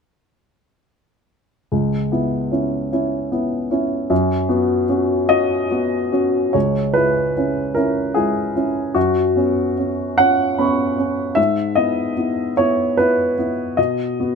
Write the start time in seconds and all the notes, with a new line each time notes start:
1.72 C#2
2.12 B3 E4
2.52 C#4 E4
2.92 C#4 E4
3.32 B3 E4
3.71 C#4 E4
4.10 F#2
4.49 B3 F#4
4.89 C#4 F#4
5.29 C#4 F#4 D#5
5.71 B3 F#4
6.12 C#4 F#4
6.53 C#2 C#5
6.94 G#3 E4 B4
7.37 C#4 E4
7.75 C#4 E4 A#4
8.14 G#3 E4 G#4
8.56 C#4 E4
8.95 F#2 F#4
9.36 B3 C#4
9.78 C#4
10.18 C#4 F#5
10.58 B3 C#4 B5 C#6
10.65 C#6
10.98 C#4
11.35 G#2 E5
11.75 B3 E4 D#5
12.17 B3 E4
12.57 B3 E4 C#5
12.97 B3 E4 B4
13.39 B3 E4
13.77 B2 D#5
14.20 B3 F#4